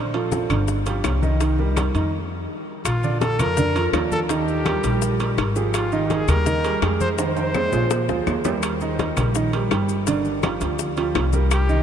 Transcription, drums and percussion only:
0.14 high conga soft
0.14 high timbale medium
0.32 high bongo medium
0.32 high conga medium
0.32 maracas medium
0.50 high conga soft
0.50 high timbale medium
0.50 claves medium
0.50 maracas soft
0.68 high bongo medium
0.68 high conga soft
0.68 maracas medium
0.86 high conga soft
0.86 high timbale medium
0.86 maracas medium
1.04 high bongo medium
1.04 low bongo medium
1.04 high conga soft
1.04 high timbale medium
1.04 low timbale medium
1.04 claves medium
1.04 maracas medium
1.23 high conga medium
1.23 maracas soft
1.40 high bongo medium
1.40 high timbale medium
1.40 maracas medium
1.58 high bongo soft
1.58 high conga soft
1.76 high bongo medium
1.76 high conga medium
1.76 high timbale medium
1.76 claves medium
1.76 maracas medium
1.95 high conga soft
1.95 high timbale medium
1.95 maracas soft
2.85 high bongo medium
2.85 high conga soft
2.85 high timbale medium
2.85 claves medium
2.85 maracas medium
3.03 high conga soft
3.03 maracas soft
3.21 high bongo medium
3.21 high conga medium
3.21 high timbale medium
3.21 maracas soft
3.39 high conga soft
3.39 low conga medium
3.39 high timbale medium
3.39 claves medium
3.39 maracas medium
3.57 high bongo medium
3.57 high conga soft
3.57 low conga medium
3.57 maracas medium
3.76 high conga soft
3.76 high timbale medium
3.76 maracas soft
3.93 high bongo medium
3.93 low bongo medium
3.93 high conga soft
3.93 high timbale medium
3.93 low timbale medium
3.93 claves medium
3.93 maracas soft
4.12 high conga medium
4.12 maracas medium
4.29 high bongo medium
4.29 high conga soft
4.29 high timbale medium
4.29 maracas medium
4.48 high conga soft
4.48 maracas soft
4.66 high bongo medium
4.66 high conga medium
4.66 high timbale medium
4.66 claves medium
4.66 maracas soft
4.84 high bongo soft
4.84 high conga soft
4.84 high timbale medium
4.84 maracas medium
5.02 high bongo medium
5.02 high conga soft
5.02 maracas medium
5.20 high bongo soft
5.20 high conga soft
5.20 high timbale medium
5.20 maracas soft
5.38 high bongo medium
5.38 low bongo medium
5.38 high conga soft
5.38 high timbale medium
5.38 claves medium
5.38 maracas soft
5.56 high bongo soft
5.56 maracas medium
5.74 high bongo medium
5.74 high conga soft
5.74 high timbale medium
5.74 claves medium
5.74 maracas medium
5.92 high conga soft
5.92 maracas soft
6.10 high bongo medium
6.10 high conga medium
6.10 high timbale medium
6.10 maracas soft
6.28 high conga soft
6.28 low conga medium
6.28 high timbale medium
6.28 claves medium
6.28 maracas medium
6.46 high bongo medium
6.46 high conga soft
6.46 low conga medium
6.46 maracas medium
6.64 high conga soft
6.64 high timbale medium
6.64 maracas soft
6.82 high bongo medium
6.82 low bongo medium
6.82 high conga soft
6.82 high timbale medium
6.82 claves medium
6.82 maracas soft
7.01 high conga medium
7.01 maracas medium
7.18 high bongo medium
7.18 high conga soft
7.18 high timbale medium
7.18 maracas medium
7.37 high conga soft
7.37 high timbale medium
7.37 maracas soft
7.54 high bongo medium
7.54 high conga medium
7.54 low timbale medium
7.54 claves medium
7.54 maracas soft
7.72 high bongo soft
7.72 high conga soft
7.72 low timbale medium
7.72 maracas medium
7.90 high bongo medium
7.90 high conga soft
7.90 low timbale medium
7.90 maracas medium
8.09 high bongo loud
8.09 high conga soft
8.09 maracas soft
8.27 low bongo medium
8.27 high conga soft
8.27 low timbale medium
8.27 claves medium
8.27 maracas soft
8.44 low bongo medium
8.44 high conga medium
8.44 low timbale loud
8.44 maracas medium
8.63 high bongo medium
8.63 high conga soft
8.63 high timbale medium
8.63 claves medium
8.63 maracas medium
8.81 high conga soft
8.81 maracas soft
8.99 high bongo medium
8.99 high conga medium
8.99 high timbale medium
8.99 maracas soft
9.17 high conga soft
9.17 low conga medium
9.17 high timbale medium
9.17 claves medium
9.17 maracas medium
9.35 high bongo medium
9.35 high conga soft
9.35 maracas medium
9.53 high conga soft
9.53 high timbale medium
9.53 maracas soft
9.71 high bongo medium
9.71 low bongo medium
9.71 high conga soft
9.71 high timbale medium
9.71 claves medium
9.71 maracas soft
9.89 maracas medium
10.07 high bongo medium
10.07 high conga soft
10.07 high timbale medium
10.07 maracas medium
10.25 high conga soft
10.25 maracas soft
10.43 high bongo medium
10.43 high conga medium
10.43 high timbale medium
10.43 claves medium
10.43 maracas soft
10.61 high bongo soft
10.61 high conga soft
10.61 high timbale medium
10.61 maracas medium
10.79 high bongo medium
10.79 high conga soft
10.79 maracas medium
10.97 high bongo soft
10.97 high conga soft
10.97 high timbale medium
10.97 maracas soft
11.15 high bongo medium
11.15 low bongo medium
11.15 high conga soft
11.15 high timbale medium
11.15 low timbale medium
11.15 claves medium
11.15 maracas soft
11.33 high bongo soft
11.33 high conga medium
11.33 maracas medium
11.51 high bongo medium
11.51 high conga soft
11.51 high timbale medium
11.51 claves medium
11.51 maracas medium
11.69 high conga soft
11.69 maracas soft

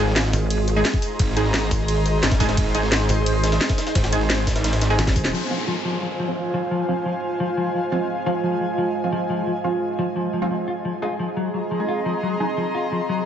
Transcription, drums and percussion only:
0.07 snare medium
0.16 snare loud
0.16 closed hi-hat medium
0.16 ride medium
0.25 snare soft
0.33 closed hi-hat medium
0.33 open hi-hat medium
0.50 closed hi-hat medium
0.50 ride medium
0.68 closed hi-hat medium
0.85 snare loud
0.85 closed hi-hat medium
0.85 ride medium
0.94 kick loud
1.02 closed hi-hat medium
1.02 open hi-hat medium
1.19 kick loud
1.19 closed hi-hat medium
1.19 ride medium
1.37 closed hi-hat medium
1.45 snare medium
1.54 snare loud
1.54 closed hi-hat medium
1.54 ride medium
1.63 snare soft
1.71 kick medium
1.71 closed hi-hat medium
1.71 open hi-hat medium
1.80 snare soft
1.88 closed hi-hat medium
1.88 ride medium
2.06 closed hi-hat medium
2.06 open hi-hat medium
2.23 snare loud
2.23 closed hi-hat medium
2.23 ride medium
2.32 kick loud
2.32 snare loud
2.32 closed hi-hat medium
2.40 kick loud
2.40 snare loud
2.40 closed hi-hat medium
2.40 open hi-hat medium
2.49 snare loud
2.49 closed hi-hat medium
2.57 kick loud
2.57 closed hi-hat medium
2.57 ride medium
2.66 snare medium
2.75 closed hi-hat medium
2.83 snare medium
2.92 snare loud
2.92 closed hi-hat medium
2.92 ride medium
3.09 closed hi-hat medium
3.09 open hi-hat medium
3.26 closed hi-hat medium
3.26 ride medium
3.44 snare loud
3.44 closed hi-hat medium
3.52 snare loud
3.52 closed hi-hat medium
3.61 snare loud
3.61 closed hi-hat medium
3.61 ride medium
3.69 kick loud
3.69 snare loud
3.69 closed hi-hat medium
3.78 snare loud
3.78 closed hi-hat medium
3.78 open hi-hat medium
3.87 snare loud
3.87 closed hi-hat medium
3.95 kick loud
3.95 snare loud
3.95 closed hi-hat medium
3.95 ride medium
4.04 snare loud
4.04 closed hi-hat medium
4.13 closed hi-hat loud
4.13 closed hi-hat medium
4.21 snare medium
4.30 snare loud
4.30 closed hi-hat medium
4.30 ride medium
4.38 snare soft
4.47 kick medium
4.47 snare loud
4.47 closed hi-hat medium
4.47 open hi-hat medium
4.56 snare loud
4.56 closed hi-hat medium
4.64 snare loud
4.64 closed hi-hat medium
4.64 ride medium
4.73 snare loud
4.73 closed hi-hat medium
4.81 snare loud
4.81 closed hi-hat loud
4.81 closed hi-hat medium
4.90 snare soft
4.99 snare medium
4.99 closed hi-hat medium
4.99 ride medium
5.07 kick loud
5.07 snare medium
5.07 snare loud
5.07 closed hi-hat medium
5.16 kick loud
5.16 snare soft
5.16 open hi-hat medium
5.25 snare medium
5.25 closed hi-hat medium

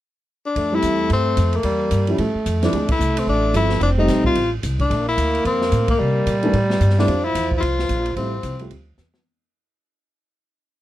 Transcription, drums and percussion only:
0.56 kick soft
0.56 ride soft
0.82 kick soft
0.82 hi-hat pedal soft
0.82 ride medium
1.10 kick soft
1.10 ride medium
1.37 kick soft
1.37 hi-hat pedal medium
1.37 ride medium
1.53 ride soft
1.63 kick soft
1.63 ride medium
1.91 kick soft
1.91 hi-hat pedal medium
1.91 ride medium
2.07 ride soft
2.18 kick soft
2.18 ride soft
2.46 kick soft
2.46 hi-hat pedal soft
2.46 ride soft
2.63 snare soft
2.63 ride soft
2.73 kick soft
2.73 ride medium
2.89 kick medium
2.89 ride medium
3.00 hi-hat pedal medium
3.17 ride medium
3.27 kick soft
3.54 kick soft
3.54 hi-hat pedal medium
3.54 ride medium
3.70 snare soft
3.81 kick soft
3.81 ride medium
4.08 kick soft
4.08 snare soft
4.08 hi-hat pedal medium
4.08 ride medium
4.24 kick soft
4.35 kick soft
4.35 ride medium
4.63 kick soft
4.63 hi-hat pedal soft
4.63 ride medium
4.79 kick medium
4.79 ride soft
4.90 kick soft
4.90 ride medium
5.18 kick soft
5.18 hi-hat pedal soft
5.18 ride medium
5.35 ride soft
5.45 kick soft
5.45 ride medium
5.61 snare soft
5.72 kick soft
5.72 hi-hat pedal soft
5.72 ride medium
5.88 kick medium
5.88 ride medium
6.26 kick soft
6.26 hi-hat pedal soft
6.26 ride medium
6.43 ride soft
6.53 kick soft
6.53 ride soft
6.70 snare soft
6.81 kick soft
6.81 hi-hat pedal soft
6.81 ride soft
6.90 snare soft
6.99 snare soft
7.08 kick soft
7.08 ride medium
7.35 kick soft
7.35 hi-hat pedal soft
7.35 ride medium
7.51 kick soft
7.62 kick soft
7.62 ride medium
7.79 snare soft
7.89 kick soft
7.89 hi-hat pedal medium
7.89 ride medium
8.06 ride soft
8.16 kick soft
8.16 ride medium
8.43 kick soft
8.43 hi-hat pedal soft
8.43 ride medium
8.59 ride soft
8.70 kick soft
8.70 ride medium
8.98 snare soft
8.98 hi-hat pedal soft
9.14 snare medium

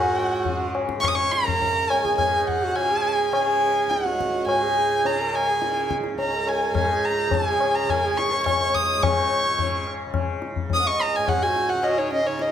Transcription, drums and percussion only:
0.45 tabla tin medium
0.45 tabla ge medium
0.75 tabla na medium
0.89 tabla ke medium
1.03 tabla na medium
1.03 tabla ge medium
1.32 tabla te medium
1.48 tabla ge medium
1.61 tabla tin medium
1.61 tabla ge medium
1.90 tabla na medium
2.05 tabla ke medium
2.18 tabla na medium
2.18 tabla ge medium
2.48 tabla ge medium
2.76 tabla na medium
3.33 tabla na medium
3.91 tabla te medium
4.06 tabla te medium
4.21 tabla ke medium
4.34 tabla te medium
4.49 tabla na medium
5.05 tabla tin medium
5.34 tabla na medium
5.62 tabla te medium
5.77 tabla te medium
5.91 tabla ke medium
6.04 tabla te medium
6.19 tabla tin medium
6.47 tabla na medium
6.75 tabla na medium
6.75 tabla ge medium
7.31 tabla tin medium
7.31 tabla ge medium
7.60 tabla na medium
7.90 tabla na medium
7.90 tabla ge medium
8.19 tabla te medium
8.46 tabla na medium
8.46 tabla ge medium
8.75 tabla ge medium
9.03 tabla na medium
9.03 tabla ge medium
9.59 tabla tin medium
9.59 tabla ge medium
9.87 tabla na medium
10.14 tabla na medium
10.14 tabla ge medium
10.42 tabla te medium
10.56 tabla ge medium
10.70 tabla tin medium
10.70 tabla ge medium
10.99 tabla na medium
11.28 tabla na medium
11.28 tabla ge medium
11.56 tabla te medium
11.83 tabla na medium
12.12 tabla na medium
12.39 tabla te medium

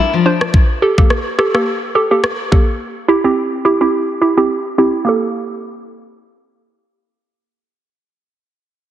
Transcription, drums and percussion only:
0.41 cross-stick medium
0.54 kick loud
0.98 kick medium
1.10 cross-stick medium
1.39 cross-stick medium
1.55 cross-stick medium
2.24 cross-stick loud
2.52 kick medium

